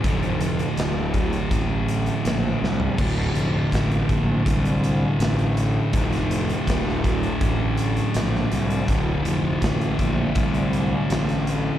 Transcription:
<<
  \new Staff \with { instrumentName = "Distorted electric guitar" } { \clef bass \time 4/4 \key d \minor \tempo 4 = 81 <d, a, d>1 | <d, a, d>1 | <d, a, d>1 | <d, a, d>1 | }
  \new Staff \with { instrumentName = "Fingered electric bass" } { \clef bass \time 4/4 \key d \minor f,,4 d,,4 a,,4 bes,,8 c,8 | d,,8 f,,8 a,,8 bes,,8 c,4 a,,4 | f,,4 d,,4 a,,4 bes,,8 c,8 | d,,8 f,,8 a,,8 bes,,8 c,4 a,,4 | }
  \new DrumStaff \with { instrumentName = "Drums" } \drummode { \time 4/4 <hh bd>16 hh16 hh16 hh16 <hh sn>8 <hh bd>16 hh16 <hh bd>8 hh16 hh16 <hh sn>8 sn16 tomfh16 | <cymc bd>8 hh8 <hh bd sn>16 hh16 <hh bd>8 <hh bd>16 hh16 hh8 <hh sn>16 hh16 hh8 | <hh bd>16 <hh sn>16 hh16 hh16 <hh bd sn>16 sn16 <hh bd>16 hh16 <hh bd>8 hh16 hh16 <hh sn>16 sn16 hh16 hh16 | <hh bd>8 hh8 <hh bd sn>16 hh16 <hh bd>8 <hh bd>16 hh16 hh8 <hh sn>16 <hh sn>16 hh8 | }
>>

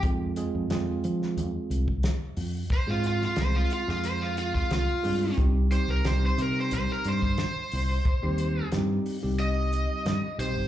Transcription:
<<
  \new Staff \with { instrumentName = "Electric slide guitar" } { \time 4/4 \key c \minor \tempo 4 = 90 r1 | c''16 f'16 f'16 f'16 c''16 f'16 f'16 f'16 c''16 f'16 f'16 f'16 f'4 | r8 c''16 bes'16 c''16 c''16 bes'16 c''16 c''16 bes'16 c''8 c''4~ | c''4 r4 ees''4. c''8 | }
  \new Staff \with { instrumentName = "Tine electric piano" } { \time 4/4 \key c \minor <aes c' f' aes'>8 <aes c' f' aes'>8 <aes c' f' aes'>4.~ <aes c' f' aes'>16 r4 r16 | r16 <aes c' f' aes'>8. <aes c' f' aes'>8. <aes c' f' aes'>4. r16 <aes c' f' aes'>8 | <g c' ees' g'>8 <g c' ees' g'>8 <g c' ees' g'>4.~ <g c' ees' g'>16 r4 r16 | r16 <g c' ees' g'>8. <g c' ees' g'>8. <g c' ees' g'>4. r16 <g c' ees' g'>8 | }
  \new Staff \with { instrumentName = "Fingered electric bass" } { \clef bass \time 4/4 \key c \minor f,8. f,16 f,8 f8 f,16 r16 c,8. r16 f,8 | r16 aes,8. c,8 r16 f,4~ f,16 c,16 r16 g,8 | c,8. c,16 c,8 c8 c,16 r16 g,8. r16 c,8 | r16 ees,8. g,8 r16 c,4~ c,16 g,16 r16 b,,16 g,,16 | }
  \new DrumStaff \with { instrumentName = "Drums" } \drummode { \time 4/4 <hh bd>8 hh8 <hh sn>8 hh16 sn16 hh8 hh16 bd16 <hh sn>8 hho8 | <hh bd>8 hh16 sn16 <hh sn>8 hh16 sn16 hh8 hh16 bd16 <hh sn>8 hho8 | <hh bd>8 hh8 <hh sn>8 hh8 hh8 hh16 bd16 <hh sn>8 hho8 | <hh bd>8 hh8 <hh sn>8 hho8 hh8 hh8 <hh sn>8 hh8 | }
>>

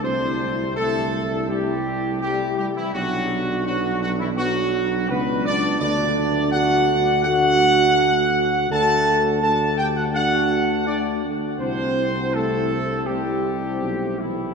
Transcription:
<<
  \new Staff \with { instrumentName = "Trumpet section" } { \time 4/4 \key d \major \tempo 4 = 83 c''4 a'4 g'4 g'8 g'16 e'16 | fis'4 fis'8 fis'16 e'16 fis'4 b'8 d''8 | d''4 fis''4 fis''2 | a''4 a''8 g''16 fis''16 fis''4 d''8 r8 |
c''4 a'4 g'4. e'8 | }
  \new Staff \with { instrumentName = "French horn section" } { \time 4/4 \key d \major << { e'2 e'4 e'4 | d'4 d'4 d'4 d'4 | d'4 d'4 d'2 | d'4 d'4 d'4 d'4 |
e'2 e'2 | } \\ { g2 g4 g4 | b4 b4 b4 b4 | a4 a4 a2 | a4 a4 a4 a8 a8 |
c'2 c'2 | } >> }
  \new Staff \with { instrumentName = "Trombone section" } { \time 4/4 \key d \major c'4 a4 g4 g8 g16 e16 | fis4 fis8 fis16 e16 fis4 b8 d'8 | d'4 fis'4 fis'2 | a'4 a'8 g'16 fis'16 fis'4 d'8 r8 |
c'4 a4 g4. e8 | }
  \new Staff \with { instrumentName = "Tuba" } { \clef bass \time 4/4 \key d \major c,2.~ c,8 r8 | b,,2. cis,4 | d,1 | d,2.~ d,8 r8 |
c,2. b,,4 | }
>>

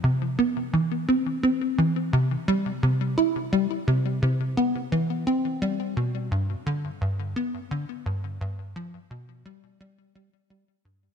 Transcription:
\new Staff \with { instrumentName = "Analog synth bass" } { \clef bass \time 4/4 \key c \major \tempo 4 = 86 c8 b8 e8 c'8 c'8 e8 c8 g8 | c8 e'8 g8 c8 c8 b8 e8 c'8 | g8 b,8 g,8 d8 g,8 b8 d8 g,8 | g,8 f8 b,8 g8 g8 g8 g8 g,8 | }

